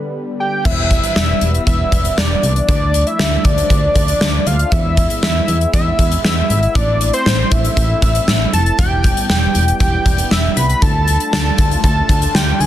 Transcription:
Already playing: D3 G3 B3 B4
0.40 G5
0.65 E1 E3 G3 B3 E5, kick, crash
0.91 kick, closed hi-hat
1.03 closed hi-hat
1.16 E1 E5, snare
1.41 E1, closed hi-hat
1.55 closed hi-hat
1.67 E1 E5, kick, closed hi-hat
1.92 E1, kick, closed hi-hat
2.05 closed hi-hat
2.18 E1 D5, snare
2.43 C2, closed hi-hat
2.56 closed hi-hat
2.69 D2 F3 A3 D4 D5, kick, closed hi-hat
2.94 closed hi-hat
3.07 E5, closed hi-hat
3.19 D2, snare
3.45 D2 D5, kick, closed hi-hat
3.58 closed hi-hat
3.70 D2, kick, closed hi-hat
3.95 D2, kick, closed hi-hat
4.08 closed hi-hat
4.21 D2, snare
4.47 D2 F5, closed hi-hat
4.59 closed hi-hat
4.72 E2 G#3 B3 E4 E5, kick, closed hi-hat
4.97 kick, closed hi-hat
5.10 closed hi-hat
5.23 E2 E5, snare
5.48 E2, closed hi-hat
5.61 closed hi-hat
5.74 E2 E5, kick, closed hi-hat
5.99 E2, kick, closed hi-hat
6.11 closed hi-hat
6.24 E2 E5, snare
6.50 G#1, closed hi-hat
6.63 closed hi-hat
6.75 A1 A3 C4 D5, kick, closed hi-hat
7.01 closed hi-hat
7.13 C5, closed hi-hat
7.26 A1, snare
7.51 A1 E5, kick, closed hi-hat
7.65 closed hi-hat
7.77 A1, kick, closed hi-hat
8.02 A1, kick, closed hi-hat
8.15 closed hi-hat
8.28 A1, snare
8.53 F1 A5, closed hi-hat
8.66 closed hi-hat
8.79 E1 G3 B3 G5, kick, closed hi-hat
9.04 kick, closed hi-hat
9.17 closed hi-hat
9.30 E1 G5, snare
9.55 E1, closed hi-hat
9.68 closed hi-hat
9.80 E1 G5, kick, closed hi-hat
10.06 E1, kick, closed hi-hat
10.18 closed hi-hat
10.31 E1 E5, snare
10.57 C2 B5, closed hi-hat
10.70 closed hi-hat
10.82 D2 A3 D4 F4 A5, kick, closed hi-hat
11.08 closed hi-hat
11.20 closed hi-hat
11.33 D2 A5, snare
11.58 D2, kick, closed hi-hat
11.71 closed hi-hat
11.84 D2 A5, kick, closed hi-hat
12.09 D2, kick, closed hi-hat
12.22 closed hi-hat
12.35 D2 G5, snare
12.60 D2 G#5, open hi-hat

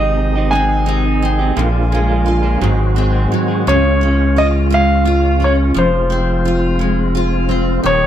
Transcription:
Already playing: G#1 C3 D#3 G#3 C4 D#4 G#4 D#5
0.00 C4 D#4 G4
0.35 C4 D#4 G4
0.51 G#3 C4 D#4 G#5
0.86 G#3 C4 D#4 G4
1.05 C4 D#4
1.22 C4
1.39 C4 D#4 G4
1.56 A#1 A#2 D3 F3 G#3 A#3 D4 F4
1.91 F3 G#3 D4 F4
2.08 F3 G#3 D4 F4
2.26 F4
2.43 F3 G#3 D4 F4
2.61 G#1 G#2 D#3 F#3 G#3 C4 F#4 G#4
2.95 F#3 G#3 C4 G#4
3.13 F#3 G#3 C4 G#4
3.32 F#3
3.48 F#3 G#3 C4 G#4
3.67 C#2 C#3 G#3 C#4 F4 C#5
4.01 C#4
4.36 F4 D#5
4.70 G#3 F5
5.05 F4
5.40 C#4
5.44 C#5
5.74 F1 F3 C4
5.78 C5
6.10 C4
6.45 F4
6.79 G#3
7.15 F4
7.49 C4
7.83 D#1 D#3 A#3 D#4 G4 C#5

